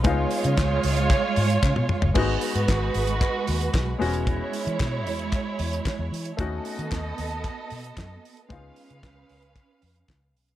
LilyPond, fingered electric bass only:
\new Staff \with { instrumentName = "Fingered electric bass" } { \clef bass \time 4/4 \key cis \minor \tempo 4 = 114 cis,8 r16 cis16 cis,8 cis,8. r16 gis,8 cis16 b,16 r16 fis,,16 | gis,,8 r16 gis,16 gis,,8 gis,,8. r16 dis,8 b,,8 e,,8~ | e,,8 r16 e16 b,8 e,8. r16 e,8 r16 e,16 e8 | dis,8 r16 dis16 dis,8 dis,8. r16 b,8 fis,8 r8 |
cis,8 r16 cis16 cis,8 cis,8. r16 eis,8 cis,8 b,,8 | }